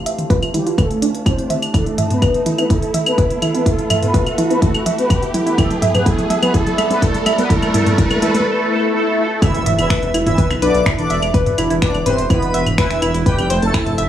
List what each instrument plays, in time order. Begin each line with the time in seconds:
Already playing: ambient pad A3 G4 F5 A5, riser
0.06 synth arpeggio sound E5, closed hi-hat
0.19 closed hi-hat, mid tom
0.30 analog polysynth F3 F4, synth arpeggio sound B4, kick, closed hi-hat
0.43 closed hi-hat, claves
0.54 analog polysynth G3 G4, synth arpeggio sound E4, closed hi-hat, mid tom
0.66 synth arpeggio sound F4, closed hi-hat
0.78 analog polysynth A3 A4, synth arpeggio sound B4, kick, closed hi-hat, mid tom, claves
0.91 closed hi-hat
1.02 synth arpeggio sound D4, closed hi-hat
1.15 closed hi-hat
1.26 analog polysynth C4 C5, synth arpeggio sound E4, kick, closed hi-hat, claves
1.38 closed hi-hat
1.50 synth arpeggio sound E5, closed hi-hat, mid tom
1.62 closed hi-hat, claves
1.74 analog polysynth A3 A4, synth arpeggio sound E4, kick, closed hi-hat, mid tom, claves
1.86 closed hi-hat
1.98 synth arpeggio sound E5, closed hi-hat, mid tom
2.10 analog polysynth B3 B4, closed hi-hat, mid tom
2.17 ambient pad A4
2.22 synth arpeggio sound B4, ambient pad E5, kick, closed hi-hat, mid tom, claves
2.34 closed hi-hat
2.46 synth arpeggio sound E4, closed hi-hat, mid tom
2.58 analog polysynth B3 B4, synth arpeggio sound E4, closed hi-hat, claves
2.70 analog polysynth A3 A4, synth arpeggio sound E4, kick, closed hi-hat, mid tom
2.82 closed hi-hat
2.94 synth arpeggio sound E5, closed hi-hat, mid tom
3.06 analog polysynth B3 B4, closed hi-hat, claves
3.18 synth arpeggio sound B4, kick, closed hi-hat, mid tom
3.30 closed hi-hat
3.42 synth arpeggio sound E4, closed hi-hat, mid tom, claves
3.54 analog polysynth B3 B4, synth arpeggio sound E4, closed hi-hat
3.66 analog polysynth A3 A4, synth arpeggio sound E4, kick, closed hi-hat, mid tom
3.79 closed hi-hat
3.90 synth arpeggio sound E5, closed hi-hat, mid tom, claves
4.02 analog polysynth B3 B4, closed hi-hat, mid tom
4.14 synth arpeggio sound B4, kick, closed hi-hat, mid tom
4.26 closed hi-hat, claves
4.38 synth arpeggio sound E4, closed hi-hat, mid tom
4.50 analog polysynth B3 B4, synth arpeggio sound E4, closed hi-hat
4.62 analog polysynth A3 A4, synth arpeggio sound E4, kick, closed hi-hat, mid tom
4.74 closed hi-hat, claves
4.86 synth arpeggio sound E5, closed hi-hat, mid tom
4.98 analog polysynth B3 B4, closed hi-hat
5.10 synth arpeggio sound B4, kick, closed hi-hat, mid tom, claves
5.23 closed hi-hat
5.34 synth arpeggio sound E4, closed hi-hat, mid tom
5.46 analog polysynth B3 B4, synth arpeggio sound E4, closed hi-hat
5.58 analog polysynth A3 A4, ambient pad B3, synth arpeggio sound E4, kick, closed hi-hat, mid tom, claves
5.71 closed hi-hat, mid tom
5.82 synth arpeggio sound E5, closed hi-hat, mid tom
5.87 ambient pad G4
5.94 analog polysynth B3 B4, closed hi-hat, mid tom, claves
6.06 analog polysynth A3 A4, synth arpeggio sound E4, kick, closed hi-hat, mid tom
6.18 closed hi-hat, mid tom
6.30 synth arpeggio sound E5, closed hi-hat, mid tom
6.42 analog polysynth B3 B4, ambient pad D5 B5, closed hi-hat, mid tom, claves
6.54 analog polysynth A3 A4, synth arpeggio sound E4, kick, closed hi-hat, mid tom
6.67 closed hi-hat, mid tom
6.78 synth arpeggio sound E5, closed hi-hat, mid tom, claves
6.91 analog polysynth B3 B4, closed hi-hat, mid tom
7.02 analog polysynth A3 A4, synth arpeggio sound E4, kick, closed hi-hat, mid tom
7.14 closed hi-hat, mid tom
7.26 synth arpeggio sound E5, closed hi-hat, mid tom, claves
7.38 analog polysynth B3 B4, closed hi-hat, mid tom
7.50 analog polysynth A3 A4, synth arpeggio sound E4, kick, closed hi-hat, mid tom
7.56 mid tom
7.62 closed hi-hat, mid tom, claves
7.68 mid tom
7.74 analog polysynth A3 A4, synth arpeggio sound E4, closed hi-hat, mid tom
7.80 mid tom
7.86 closed hi-hat, mid tom
7.92 mid tom
7.98 analog polysynth A3 A4, synth arpeggio sound E4, kick, closed hi-hat, mid tom
8.04 mid tom
8.11 closed hi-hat, mid tom, claves
8.16 mid tom
8.22 analog polysynth A3 A4, synth arpeggio sound E4, closed hi-hat, mid tom
8.28 mid tom
8.35 closed hi-hat, mid tom
8.40 mid tom
8.46 analog polysynth A3 A4, swell
8.70 analog polysynth A3 A4
8.94 analog polysynth A3 A4
9.18 analog polysynth A3 A4
9.42 analog polysynth E3 E4, ambient pad D4, synth arpeggio sound E4, digital synth lead E5, kick, closed hi-hat, impact, claves
9.54 detuned saw bass E1, closed hi-hat
9.66 detuned saw bass E1, synth arpeggio sound E5, closed hi-hat, mid tom
9.78 detuned saw bass E1, analog polysynth E3 E4, digital synth lead E5, closed hi-hat, claves
9.90 synth arpeggio sound B4, finger snap, kick, closed hi-hat
10.02 detuned saw bass E1, closed hi-hat
10.14 detuned saw bass E1, synth arpeggio sound E4, closed hi-hat, claves
10.26 detuned saw bass E1, analog polysynth E3 E4, synth arpeggio sound E4, digital synth lead E5, closed hi-hat, mid tom
10.32 ambient pad E5
10.38 synth arpeggio sound B4, kick, closed hi-hat
10.50 detuned saw bass B1, finger snap, closed hi-hat, claves
10.62 detuned saw bass B1, analog polysynth D3 D4, synth arpeggio sound B4, digital synth lead D5, closed hi-hat
10.74 detuned saw bass B1, closed hi-hat
10.86 synth arpeggio sound E4, finger snap, kick, closed hi-hat, mid tom, claves
10.98 detuned saw bass E1, analog polysynth D3 D4, digital synth lead D5, closed hi-hat
11.10 detuned saw bass E1, synth arpeggio sound E5, closed hi-hat
11.22 detuned saw bass E1, closed hi-hat, claves
11.34 synth arpeggio sound B4, kick, closed hi-hat
11.46 detuned saw bass E1, closed hi-hat, mid tom
11.58 detuned saw bass E1, synth arpeggio sound E4, closed hi-hat, claves
11.70 detuned saw bass E1, synth arpeggio sound E4, closed hi-hat
11.82 analog polysynth D3 D4, synth arpeggio sound B4, digital synth lead D5, finger snap, kick, closed hi-hat
11.94 detuned saw bass E1, closed hi-hat, claves
12.06 detuned saw bass E1, analog polysynth C3 C4, synth arpeggio sound B4, digital synth lead C5, closed hi-hat, mid tom
12.18 detuned saw bass E1, closed hi-hat
12.30 analog polysynth B2 B3, synth arpeggio sound E4, digital synth lead B4, kick, closed hi-hat, claves
12.42 detuned saw bass E1, closed hi-hat
12.54 detuned saw bass E1, synth arpeggio sound E5, closed hi-hat
12.66 detuned saw bass E1, closed hi-hat, mid tom, claves
12.78 analog polysynth E3 E4, synth arpeggio sound B4, digital synth lead E5, finger snap, kick, closed hi-hat
12.90 detuned saw bass E1, finger snap, closed hi-hat
13.02 detuned saw bass E1, synth arpeggio sound E4, closed hi-hat, claves
13.14 detuned saw bass E1, synth arpeggio sound E4, closed hi-hat
13.26 analog polysynth G3 G4, ambient pad A3, synth arpeggio sound B4, digital synth lead G5, kick, closed hi-hat, mid tom
13.38 detuned saw bass F1, closed hi-hat, claves
13.50 detuned saw bass F1, synth arpeggio sound C5, closed hi-hat
13.62 detuned saw bass F1, analog polysynth A3 A4, digital synth lead A5, closed hi-hat
13.74 synth arpeggio sound E4, finger snap, kick, closed hi-hat, claves
13.86 detuned saw bass F1, closed hi-hat, mid tom
13.98 detuned saw bass F1, synth arpeggio sound E5, closed hi-hat